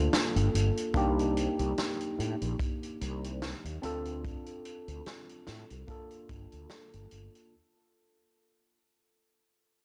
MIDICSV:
0, 0, Header, 1, 4, 480
1, 0, Start_track
1, 0, Tempo, 821918
1, 557, Time_signature, 4, 2, 24, 8
1, 5747, End_track
2, 0, Start_track
2, 0, Title_t, "Tine electric piano"
2, 0, Program_c, 0, 4
2, 0, Control_c, 0, 64, 127
2, 0, Note_on_c, 0, 58, 76
2, 0, Note_on_c, 0, 62, 71
2, 0, Note_on_c, 0, 65, 70
2, 0, Note_on_c, 0, 69, 84
2, 509, Note_off_c, 0, 58, 0
2, 512, Note_off_c, 0, 62, 0
2, 515, Note_off_c, 0, 65, 0
2, 518, Note_off_c, 0, 69, 0
2, 549, Note_on_c, 0, 58, 90
2, 555, Note_on_c, 0, 62, 82
2, 560, Note_on_c, 0, 63, 80
2, 565, Control_c, 0, 64, 0
2, 567, Note_on_c, 0, 67, 97
2, 653, Control_c, 0, 64, 127
2, 2190, Note_off_c, 0, 58, 0
2, 2193, Note_off_c, 0, 62, 0
2, 2195, Note_off_c, 0, 63, 0
2, 2199, Note_off_c, 0, 67, 0
2, 2231, Note_on_c, 0, 60, 88
2, 2236, Note_on_c, 0, 62, 79
2, 2242, Note_on_c, 0, 65, 78
2, 2246, Control_c, 0, 64, 0
2, 2250, Note_on_c, 0, 69, 98
2, 2336, Control_c, 0, 64, 127
2, 3391, Note_off_c, 0, 60, 0
2, 3393, Note_off_c, 0, 62, 0
2, 3396, Note_off_c, 0, 65, 0
2, 3400, Note_off_c, 0, 69, 0
2, 3429, Note_on_c, 0, 58, 75
2, 3434, Note_on_c, 0, 62, 70
2, 3438, Note_on_c, 0, 65, 66
2, 3444, Control_c, 0, 64, 0
2, 3447, Note_on_c, 0, 69, 83
2, 3543, Control_c, 0, 64, 127
2, 4350, Note_off_c, 0, 58, 0
2, 4352, Note_off_c, 0, 62, 0
2, 4354, Note_off_c, 0, 65, 0
2, 4359, Note_off_c, 0, 69, 0
2, 4405, Control_c, 0, 64, 0
2, 5747, End_track
3, 0, Start_track
3, 0, Title_t, "Fretless electric bass"
3, 0, Program_c, 1, 35
3, 208, Note_on_c, 1, 31, 96
3, 278, Note_off_c, 1, 31, 0
3, 315, Note_on_c, 1, 31, 77
3, 401, Note_off_c, 1, 31, 0
3, 550, Note_on_c, 1, 36, 92
3, 851, Note_off_c, 1, 36, 0
3, 928, Note_on_c, 1, 36, 98
3, 998, Note_off_c, 1, 36, 0
3, 1277, Note_on_c, 1, 45, 97
3, 1362, Note_off_c, 1, 45, 0
3, 1408, Note_on_c, 1, 34, 88
3, 1478, Note_off_c, 1, 34, 0
3, 1759, Note_on_c, 1, 36, 88
3, 2055, Note_off_c, 1, 36, 0
3, 2127, Note_on_c, 1, 39, 79
3, 2198, Note_off_c, 1, 39, 0
3, 2237, Note_on_c, 1, 38, 76
3, 2534, Note_off_c, 1, 38, 0
3, 2848, Note_on_c, 1, 38, 93
3, 2918, Note_off_c, 1, 38, 0
3, 3198, Note_on_c, 1, 45, 95
3, 3282, Note_off_c, 1, 45, 0
3, 3331, Note_on_c, 1, 36, 82
3, 3399, Note_off_c, 1, 36, 0
3, 3676, Note_on_c, 1, 31, 90
3, 3761, Note_off_c, 1, 31, 0
3, 3811, Note_on_c, 1, 38, 80
3, 3879, Note_off_c, 1, 38, 0
3, 4050, Note_on_c, 1, 31, 88
3, 4119, Note_off_c, 1, 31, 0
3, 4156, Note_on_c, 1, 31, 74
3, 4241, Note_off_c, 1, 31, 0
3, 5747, End_track
4, 0, Start_track
4, 0, Title_t, "Drums"
4, 77, Note_on_c, 9, 38, 113
4, 81, Note_on_c, 9, 42, 65
4, 136, Note_off_c, 9, 38, 0
4, 139, Note_off_c, 9, 42, 0
4, 212, Note_on_c, 9, 42, 56
4, 270, Note_off_c, 9, 42, 0
4, 322, Note_on_c, 9, 42, 98
4, 380, Note_off_c, 9, 42, 0
4, 452, Note_on_c, 9, 42, 52
4, 510, Note_off_c, 9, 42, 0
4, 550, Note_on_c, 9, 36, 112
4, 559, Note_on_c, 9, 42, 71
4, 608, Note_off_c, 9, 36, 0
4, 617, Note_off_c, 9, 42, 0
4, 695, Note_on_c, 9, 42, 49
4, 754, Note_off_c, 9, 42, 0
4, 799, Note_on_c, 9, 42, 85
4, 857, Note_off_c, 9, 42, 0
4, 929, Note_on_c, 9, 42, 51
4, 987, Note_off_c, 9, 42, 0
4, 1037, Note_on_c, 9, 42, 69
4, 1041, Note_on_c, 9, 38, 105
4, 1095, Note_off_c, 9, 42, 0
4, 1100, Note_off_c, 9, 38, 0
4, 1170, Note_on_c, 9, 42, 47
4, 1229, Note_off_c, 9, 42, 0
4, 1283, Note_on_c, 9, 42, 83
4, 1341, Note_off_c, 9, 42, 0
4, 1410, Note_on_c, 9, 42, 50
4, 1469, Note_off_c, 9, 42, 0
4, 1515, Note_on_c, 9, 36, 103
4, 1519, Note_on_c, 9, 42, 76
4, 1574, Note_off_c, 9, 36, 0
4, 1577, Note_off_c, 9, 42, 0
4, 1652, Note_on_c, 9, 42, 49
4, 1711, Note_off_c, 9, 42, 0
4, 1759, Note_on_c, 9, 42, 90
4, 1818, Note_off_c, 9, 42, 0
4, 1894, Note_on_c, 9, 42, 56
4, 1952, Note_off_c, 9, 42, 0
4, 1998, Note_on_c, 9, 38, 97
4, 1998, Note_on_c, 9, 42, 70
4, 2056, Note_off_c, 9, 38, 0
4, 2056, Note_off_c, 9, 42, 0
4, 2134, Note_on_c, 9, 42, 50
4, 2192, Note_off_c, 9, 42, 0
4, 2237, Note_on_c, 9, 42, 92
4, 2296, Note_off_c, 9, 42, 0
4, 2367, Note_on_c, 9, 42, 50
4, 2426, Note_off_c, 9, 42, 0
4, 2480, Note_on_c, 9, 36, 93
4, 2480, Note_on_c, 9, 42, 72
4, 2538, Note_off_c, 9, 36, 0
4, 2539, Note_off_c, 9, 42, 0
4, 2607, Note_on_c, 9, 42, 50
4, 2665, Note_off_c, 9, 42, 0
4, 2716, Note_on_c, 9, 42, 97
4, 2775, Note_off_c, 9, 42, 0
4, 2850, Note_on_c, 9, 42, 55
4, 2908, Note_off_c, 9, 42, 0
4, 2956, Note_on_c, 9, 42, 73
4, 2959, Note_on_c, 9, 38, 99
4, 3014, Note_off_c, 9, 42, 0
4, 3017, Note_off_c, 9, 38, 0
4, 3090, Note_on_c, 9, 42, 50
4, 3149, Note_off_c, 9, 42, 0
4, 3193, Note_on_c, 9, 38, 57
4, 3195, Note_on_c, 9, 42, 86
4, 3251, Note_off_c, 9, 38, 0
4, 3253, Note_off_c, 9, 42, 0
4, 3329, Note_on_c, 9, 42, 54
4, 3387, Note_off_c, 9, 42, 0
4, 3434, Note_on_c, 9, 36, 97
4, 3435, Note_on_c, 9, 42, 71
4, 3493, Note_off_c, 9, 36, 0
4, 3494, Note_off_c, 9, 42, 0
4, 3565, Note_on_c, 9, 42, 55
4, 3623, Note_off_c, 9, 42, 0
4, 3673, Note_on_c, 9, 42, 100
4, 3675, Note_on_c, 9, 36, 105
4, 3731, Note_off_c, 9, 42, 0
4, 3733, Note_off_c, 9, 36, 0
4, 3807, Note_on_c, 9, 42, 54
4, 3865, Note_off_c, 9, 42, 0
4, 3911, Note_on_c, 9, 38, 98
4, 3913, Note_on_c, 9, 42, 77
4, 3969, Note_off_c, 9, 38, 0
4, 3971, Note_off_c, 9, 42, 0
4, 4049, Note_on_c, 9, 42, 57
4, 4107, Note_off_c, 9, 42, 0
4, 4152, Note_on_c, 9, 42, 102
4, 4210, Note_off_c, 9, 42, 0
4, 4292, Note_on_c, 9, 42, 47
4, 4350, Note_off_c, 9, 42, 0
4, 5747, End_track
0, 0, End_of_file